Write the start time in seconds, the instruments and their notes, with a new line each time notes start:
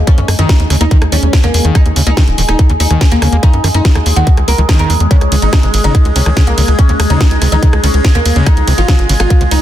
Already playing: synth drone G#3 G#4
0.07 acid bass E3, oud C#4, kick, closed hi-hat
0.18 analog synth bass F#2, acid bass C#3, closed hi-hat
0.28 analog synth bass F#2, cross-stick, open hi-hat
0.39 analog synth bass F#2, acid bass D#3, oud D#4, closed hi-hat
0.49 acid bass D#4, kick, snare, closed hi-hat
0.60 analog synth bass D#2, closed hi-hat
0.70 analog synth bass D#2, acid bass C#3, cross-stick, open hi-hat
0.81 analog synth bass D#2, acid bass A#3, oud D#4, closed hi-hat
0.91 acid bass D#3, kick, closed hi-hat
1.02 analog synth bass D#2, cross-stick, closed hi-hat
1.12 analog synth bass D#2, acid bass D#3, oud C#4, open hi-hat
1.23 analog synth bass D#2, closed hi-hat
1.33 acid bass E3, kick, snare, closed hi-hat
1.44 analog synth bass E2, acid bass C#3, oud A#3, cross-stick, closed hi-hat
1.54 analog synth bass E2, open hi-hat
1.65 analog synth bass E2, acid bass D#3, closed hi-hat
1.75 oud D#4, acid bass D#4, kick, cross-stick, closed hi-hat
1.86 analog synth bass D#2, closed hi-hat
1.96 analog synth bass D#2, acid bass C#3, open hi-hat
2.07 analog synth bass C#2, acid bass A#3, oud D#4, closed hi-hat
2.17 acid bass D#3, kick, cross-stick, snare, closed hi-hat
2.28 analog synth bass D#1, closed hi-hat
2.38 analog synth bass D#1, acid bass D#3, open hi-hat
2.49 analog synth bass D#1, oud D#4, cross-stick, closed hi-hat
2.59 acid bass E3, kick, closed hi-hat
2.70 analog synth bass D#2, acid bass C#3, closed hi-hat
2.80 analog synth bass D#2, oud D#4, open hi-hat
2.90 analog synth bass D#2, acid bass D#3, cross-stick, closed hi-hat
3.01 acid bass D#4, kick, snare, closed hi-hat
3.11 analog synth bass D#2, oud A#3, closed hi-hat
3.22 analog synth bass D#2, acid bass C#3, cross-stick, open hi-hat
3.32 analog synth bass D#2, acid bass A#3, closed hi-hat
3.43 acid bass D#3, oud D#4, kick, closed hi-hat
3.53 analog synth bass F#2, closed hi-hat
3.64 analog synth bass F#2, acid bass D#3, cross-stick, open hi-hat
3.74 analog synth bass F#2, oud D#4, closed hi-hat
3.85 acid bass E3, kick, snare, closed hi-hat
3.95 analog synth bass D#2, acid bass C#3, cross-stick, closed hi-hat
4.06 analog synth bass D#2, open hi-hat
4.16 analog synth bass D#2, acid bass D#3, oud F#4, closed hi-hat
4.27 acid bass D#4, kick, closed hi-hat
4.37 analog synth bass C#2, cross-stick, closed hi-hat
4.48 analog synth bass C#2, acid bass A#3, oud A#4, open hi-hat
4.58 analog synth bass C#2, acid bass D#3, closed hi-hat
4.69 acid bass D#3, kick, cross-stick, snare, closed hi-hat
4.79 analog synth bass E2, oud A#4, closed hi-hat
4.90 analog synth bass E2, acid bass E3, open hi-hat
5.00 analog synth bass E2, closed hi-hat
5.11 acid bass C#3, oud C#4, kick, closed hi-hat
5.21 analog synth bass C#2, cross-stick, closed hi-hat
5.32 analog synth bass C#2, acid bass C#3, open hi-hat, ride
5.42 analog synth bass G#1, oud D#4, closed hi-hat
5.53 acid bass D#3, kick, cross-stick, snare, closed hi-hat
5.63 analog synth bass G#1, acid bass C3, closed hi-hat
5.74 analog synth bass G#1, open hi-hat, ride
5.84 analog synth bass G#1, acid bass C#3, oud D#4, closed hi-hat
5.95 acid bass C#4, kick, cross-stick, closed hi-hat
6.05 analog synth bass C#2, closed hi-hat
6.16 analog synth bass C#2, acid bass C3, oud C#4, open hi-hat, ride
6.26 analog synth bass C#2, acid bass D#3, cross-stick, closed hi-hat
6.37 acid bass C#3, kick, snare, closed hi-hat
6.47 analog synth bass C#2, oud A#3, closed hi-hat
6.58 analog synth bass C#2, acid bass C#3, open hi-hat, ride
6.68 analog synth bass C#2, cross-stick, closed hi-hat
6.79 acid bass D#3, oud C#4, kick, closed hi-hat
6.89 analog synth bass D#2, acid bass C3, closed hi-hat
7.00 analog synth bass D#2, cross-stick, open hi-hat, ride
7.10 analog synth bass D#2, acid bass C#3, oud D#4, closed hi-hat
7.21 acid bass C#4, kick, snare, closed hi-hat
7.31 analog synth bass C#2, closed hi-hat
7.42 analog synth bass C#2, acid bass C3, cross-stick, open hi-hat, ride
7.52 analog synth bass C#2, acid bass D#3, oud D#4, closed hi-hat
7.63 acid bass C#3, kick, closed hi-hat
7.73 analog synth bass C#2, cross-stick, closed hi-hat
7.84 analog synth bass C#2, acid bass C#3, oud C#4, open hi-hat, ride
7.94 analog synth bass C#2, closed hi-hat
8.05 acid bass D#3, kick, snare, closed hi-hat
8.15 analog synth bass D#2, acid bass C3, oud A#3, cross-stick, closed hi-hat
8.26 analog synth bass D#2, open hi-hat, ride
8.36 analog synth bass D#2, acid bass C#3, closed hi-hat
8.46 acid bass C#4, oud D#4, kick, cross-stick, closed hi-hat
8.57 analog synth bass C#2, closed hi-hat
8.67 analog synth bass C#2, acid bass C3, open hi-hat, ride
8.78 analog synth bass G#1, acid bass D#3, oud F4, closed hi-hat
8.88 acid bass C#3, kick, cross-stick, snare, closed hi-hat
8.99 analog synth bass G#1, closed hi-hat
9.09 analog synth bass G#1, acid bass C#3, open hi-hat, ride
9.20 analog synth bass G#1, oud F4, cross-stick, closed hi-hat
9.30 acid bass D#3, kick, closed hi-hat
9.41 analog synth bass C#2, acid bass C3, closed hi-hat
9.51 analog synth bass C#2, oud D#4, open hi-hat, ride